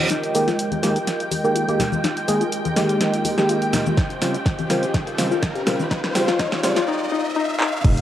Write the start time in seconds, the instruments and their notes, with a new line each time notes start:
Already playing: ambient pad C#3 F4 A#4 D#5, reverse cymbal
0.10 analog synth pad G#3 F4 G4 A#4 D#5, synth pluck D#4, string machine G5, snare, closed hi-hat, riser, cabasa
0.23 closed hi-hat, cabasa
0.34 synth stab D#3 G#3 A#3 G4, open hi-hat, cabasa
0.47 synth pluck F4, snare, closed hi-hat, cabasa
0.59 closed hi-hat, cabasa
0.71 synth pluck G4, closed hi-hat, high conga, cabasa
0.83 synth stab D#3 G#3 A#3 G4, synth pluck G#4, snare, open hi-hat, cabasa
0.96 closed hi-hat, cabasa
1.07 snare, closed hi-hat, cabasa
1.20 closed hi-hat, cabasa
1.31 synth pluck G4, open hi-hat, high conga, cabasa
1.44 synth stab D#3 G#3 A#3 G4, cabasa
1.55 synth pluck F4, closed hi-hat, cabasa
1.68 synth stab D#3 G#3 A#3 G4, closed hi-hat, cabasa
1.80 synth pluck D#4, snare, open hi-hat, low conga, cabasa
1.92 high conga, cabasa
2.04 synth pluck D#4, snare, closed hi-hat, cabasa
2.17 closed hi-hat, cabasa
2.28 synth stab D#3 G#3 A#3 G#4, open hi-hat, cabasa
2.41 synth pluck F4, closed hi-hat, cabasa
2.52 closed hi-hat, cabasa
2.65 synth pluck G4, closed hi-hat, high conga, cabasa
2.76 synth stab D#3 G#3 A#3 G4, synth pluck G#4, snare, open hi-hat, cabasa
2.89 closed hi-hat, cabasa
3.01 snare, closed hi-hat, cabasa
3.14 closed hi-hat, cabasa
3.24 synth pluck G4, open hi-hat, high conga, cabasa
3.37 synth stab D#3 G#3 A#3 G4, snare, cabasa
3.49 synth pluck F4, closed hi-hat, cabasa
3.62 closed hi-hat, cabasa
3.73 synth pluck D#4, snare, open hi-hat, low conga, cabasa
3.86 high conga, cabasa
3.97 ambient pad D#3, analog synth pad C#4 G4 C5, synth pluck D#4, kick, snare, closed hi-hat, cabasa
4.10 ambient pad G4, closed hi-hat, cabasa
4.21 synth stab C#3 G3 C4 F4, snare, open hi-hat, cabasa
4.29 ambient pad F5
4.34 synth pluck F4, closed hi-hat, cabasa
4.46 kick, snare, closed hi-hat, cabasa
4.59 synth pluck G4, closed hi-hat, high conga, cabasa
4.70 synth stab C#3 G3 C4 F4, synth pluck A#4, snare, open hi-hat, cabasa
4.83 closed hi-hat, cabasa
4.94 synth pluck D#4, ambient pad C5, kick, snare, closed hi-hat, cabasa
5.07 closed hi-hat, cabasa
5.18 synth stab C#3 G3 C4 F4, snare, open hi-hat, high conga, cabasa
5.31 synth pluck F4, cabasa
5.43 kick, snare, closed hi-hat, cabasa
5.55 synth pluck G4, closed hi-hat, cabasa
5.66 synth stab C#3 G3 C4 F4, synth pluck A#4, snare, open hi-hat, low conga, cabasa
5.80 high conga, cabasa
5.91 synth pluck D#4, kick, snare, closed hi-hat, cabasa
6.04 snare, closed hi-hat, cabasa
6.15 synth stab C#3 G3 C4 F4, snare, open hi-hat, cabasa
6.28 synth pluck F4, snare, closed hi-hat, cabasa
6.39 synth pluck D#4, kick, snare, closed hi-hat, cabasa
6.52 snare, closed hi-hat, high conga, cabasa
6.63 synth stab C#3 G3 C4 F4, snare, open hi-hat, cabasa
6.76 synth pluck F4, snare, closed hi-hat, cabasa
6.88 synth pluck D#4
7.12 synth pluck D#4
7.36 synth pluck D#4
7.60 synth pluck D#4, clap
7.84 analog synth bass F1, analog synth pad G#3 G4 A#4 D#5, synth pluck D#4, kick, closed hi-hat, crash, sub drop, cabasa
7.97 closed hi-hat, cabasa